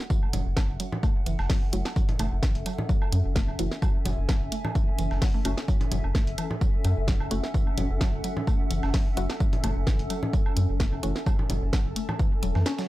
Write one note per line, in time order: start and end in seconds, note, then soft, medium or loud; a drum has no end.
0.00 12.88 C#4 medium
0.00 12.88 A4 medium
0.00 12.88 E5 medium
0.00 2.46 F#5 medium
0.10 0.19 E3 medium
0.10 kick loud
0.10 tambourine medium
0.23 low woodblock soft
0.33 0.43 F#1 loud
0.33 0.39 F#3 medium
0.33 closed hi-hat medium
0.33 tambourine medium
0.33 low conga medium
0.46 0.54 F#1 medium
0.57 0.65 F#3 medium
0.57 kick loud
0.57 snare loud
0.57 snare medium
0.57 tambourine medium
0.57 low woodblock medium
0.69 0.77 F#1 medium
0.80 0.86 F#3 medium
0.80 closed hi-hat medium
0.80 tambourine medium
0.92 low conga medium
1.03 1.07 A3 medium
1.03 kick loud
1.03 tambourine medium
1.03 low woodblock soft
1.26 1.36 F#1 medium
1.26 1.35 E3 medium
1.26 closed hi-hat medium
1.26 tambourine medium
1.39 1.47 F#1 loud
1.39 snare soft
1.39 low woodblock medium
1.50 1.55 F#3 medium
1.50 kick loud
1.50 snare loud
1.50 snare medium
1.50 open hi-hat medium
1.73 1.82 F#1 loud
1.73 1.81 F#3 medium
1.73 1.80 A3 medium
1.73 1.80 C#4 medium
1.73 1.80 E4 medium
1.73 1.80 F#4 loud
1.73 closed hi-hat medium
1.73 tambourine medium
1.85 snare medium
1.85 snare soft
1.85 low woodblock soft
1.96 2.02 F#3 medium
1.96 kick loud
1.96 tambourine medium
2.09 closed hi-hat soft
2.09 low conga medium
2.19 2.29 F#1 loud
2.19 2.23 A3 medium
2.19 closed hi-hat medium
2.19 tambourine medium
2.19 low conga medium
2.19 low woodblock medium
2.32 2.40 F#1 medium
2.43 2.51 E3 medium
2.43 6.18 G#5 medium
2.43 kick loud
2.43 snare loud
2.43 snare medium
2.43 tambourine medium
2.55 2.63 F#1 medium
2.55 closed hi-hat soft
2.66 2.72 F#3 medium
2.66 closed hi-hat loud
2.66 tambourine medium
2.66 low woodblock soft
2.78 low conga medium
2.89 2.98 F#3 medium
2.89 kick loud
2.89 tambourine medium
3.02 low woodblock medium
3.12 3.22 F#2 medium
3.12 3.18 F#3 medium
3.12 closed hi-hat medium
3.12 tambourine medium
3.25 3.42 F#1 medium
3.36 3.39 A3 medium
3.36 kick loud
3.36 snare medium
3.36 snare loud
3.36 tambourine medium
3.48 3.56 F#1 medium
3.48 low woodblock soft
3.59 3.68 F#1 medium
3.59 3.67 E3 medium
3.59 3.66 A3 medium
3.59 3.66 C#4 medium
3.59 3.66 E4 medium
3.59 3.66 F#4 medium
3.59 closed hi-hat loud
3.59 tambourine medium
3.72 snare medium
3.82 3.88 F#3 medium
3.82 kick loud
3.82 tambourine medium
3.82 low woodblock medium
4.05 4.15 F#1 loud
4.05 4.14 F#3 medium
4.05 closed hi-hat medium
4.05 tambourine medium
4.05 low conga medium
4.18 4.26 F#1 medium
4.29 4.34 F#3 medium
4.29 kick loud
4.29 snare loud
4.29 snare medium
4.29 tambourine medium
4.29 low woodblock soft
4.41 4.49 F#1 medium
4.52 4.55 A3 medium
4.52 closed hi-hat medium
4.52 tambourine medium
4.65 low conga medium
4.65 low woodblock medium
4.75 4.84 E3 medium
4.75 kick loud
4.75 tambourine medium
4.98 5.08 F#1 loud
4.98 5.04 E3 medium
4.98 closed hi-hat medium
4.98 tambourine medium
5.11 5.19 F#1 loud
5.11 snare soft
5.11 low woodblock soft
5.22 5.27 F#3 loud
5.22 kick loud
5.22 snare loud
5.22 snare medium
5.22 closed hi-hat soft
5.22 open hi-hat medium
5.34 5.39 A3 medium
5.45 5.54 F#1 medium
5.45 5.52 A3 medium
5.45 5.52 C#4 medium
5.45 5.51 C#4 loud
5.45 5.52 E4 medium
5.45 5.52 F#4 medium
5.45 closed hi-hat medium
5.45 tambourine medium
5.45 low woodblock medium
5.57 snare soft
5.57 snare medium
5.68 5.77 F#3 medium
5.68 kick loud
5.68 tambourine medium
5.81 closed hi-hat soft
5.81 low conga medium
5.92 6.01 F#1 loud
5.92 5.97 F#3 medium
5.92 closed hi-hat medium
5.92 tambourine medium
5.92 low conga medium
6.04 6.12 F#1 medium
6.04 low woodblock soft
6.15 6.18 A3 medium
6.15 9.91 F#5 medium
6.15 kick loud
6.15 snare loud
6.15 snare medium
6.15 tambourine medium
6.27 6.35 F#1 medium
6.27 closed hi-hat soft
6.38 6.46 E3 medium
6.38 closed hi-hat medium
6.38 tambourine medium
6.38 low woodblock medium
6.51 low conga medium
6.61 6.67 F#3 medium
6.61 kick loud
6.61 tambourine medium
6.85 6.94 F#2 medium
6.85 6.93 F#3 medium
6.85 closed hi-hat medium
6.85 tambourine medium
6.85 low woodblock soft
6.97 7.14 F#1 medium
7.08 7.13 F#3 medium
7.08 kick loud
7.08 snare medium
7.08 snare loud
7.08 tambourine medium
7.20 7.28 F#1 medium
7.20 low woodblock medium
7.31 7.40 F#1 medium
7.31 7.34 A3 medium
7.31 7.38 A3 medium
7.31 7.38 C#4 medium
7.31 7.38 E4 medium
7.31 7.38 F#4 medium
7.31 closed hi-hat medium
7.31 tambourine medium
7.44 snare medium
7.54 7.63 E3 medium
7.54 kick loud
7.54 tambourine medium
7.67 low woodblock soft
7.78 7.87 F#1 loud
7.78 7.83 F#3 medium
7.78 closed hi-hat medium
7.78 tambourine medium
7.78 low conga medium
7.90 7.98 F#1 medium
8.01 8.09 F#3 medium
8.01 kick loud
8.01 snare loud
8.01 snare medium
8.01 tambourine medium
8.01 low woodblock medium
8.13 8.21 F#1 medium
8.24 8.30 F#3 medium
8.24 closed hi-hat medium
8.24 tambourine medium
8.37 low conga medium
8.47 8.51 A3 medium
8.47 kick loud
8.47 tambourine medium
8.47 low woodblock soft
8.71 8.80 F#1 loud
8.71 8.79 E3 medium
8.71 closed hi-hat medium
8.71 tambourine medium
8.83 8.91 F#1 loud
8.83 snare soft
8.83 low woodblock medium
8.94 8.99 F#3 medium
8.94 kick loud
8.94 snare loud
8.94 snare medium
8.94 open hi-hat medium
9.17 9.26 F#1 loud
9.17 9.25 F#3 medium
9.17 9.24 A3 medium
9.17 9.24 C#4 medium
9.17 9.24 E4 medium
9.17 9.24 F#4 loud
9.17 closed hi-hat medium
9.17 tambourine medium
9.30 snare soft
9.30 snare medium
9.30 low woodblock soft
9.40 9.46 F#3 medium
9.40 kick loud
9.40 tambourine medium
9.53 closed hi-hat soft
9.53 low conga medium
9.64 9.73 F#1 loud
9.64 9.67 A3 medium
9.64 closed hi-hat medium
9.64 tambourine medium
9.64 low conga medium
9.64 low woodblock medium
9.76 9.84 F#1 medium
9.87 9.95 E3 medium
9.87 12.88 A5 medium
9.87 kick loud
9.87 snare loud
9.87 snare medium
9.87 tambourine medium
9.99 10.07 F#1 medium
9.99 closed hi-hat soft
10.10 10.16 F#3 medium
10.10 closed hi-hat medium
10.10 tambourine medium
10.10 low woodblock soft
10.23 low conga medium
10.33 10.42 F#3 medium
10.33 kick loud
10.33 tambourine medium
10.46 low woodblock medium
10.57 10.66 F#2 medium
10.57 10.62 F#3 medium
10.57 closed hi-hat medium
10.57 tambourine medium
10.69 10.86 F#1 medium
10.80 10.83 A3 medium
10.80 kick loud
10.80 snare medium
10.80 snare loud
10.80 tambourine medium
10.92 11.00 F#1 medium
10.92 low woodblock soft
11.03 11.13 F#1 medium
11.03 11.12 E3 medium
11.03 11.10 A3 medium
11.03 11.10 C#4 medium
11.03 11.10 E4 medium
11.03 11.10 F#4 medium
11.03 closed hi-hat medium
11.03 tambourine medium
11.16 snare medium
11.26 11.32 F#3 medium
11.26 kick loud
11.26 tambourine medium
11.26 low woodblock medium
11.39 low conga medium
11.50 11.59 F#1 loud
11.50 11.58 F#3 medium
11.50 closed hi-hat medium
11.50 tambourine medium
11.50 low conga medium
11.62 11.70 F#1 medium
11.73 11.79 F#3 medium
11.73 kick loud
11.73 snare loud
11.73 snare medium
11.73 tambourine medium
11.73 low woodblock soft
11.85 11.93 F#1 medium
11.96 12.00 A3 medium
11.96 closed hi-hat medium
11.96 tambourine medium
12.09 low conga medium
12.09 low woodblock medium
12.19 12.28 E3 medium
12.19 kick loud
12.19 tambourine medium
12.43 12.52 E1 loud
12.43 12.48 F#3 loud
12.43 closed hi-hat medium
12.43 tambourine medium
12.55 12.63 F#2 medium
12.55 12.60 E3 medium
12.55 snare soft
12.55 low woodblock soft
12.66 12.72 C#4 medium
12.66 snare loud
12.66 snare medium
12.66 closed hi-hat soft
12.66 tambourine medium
12.78 12.86 F#3 medium
12.78 snare loud
12.78 tambourine medium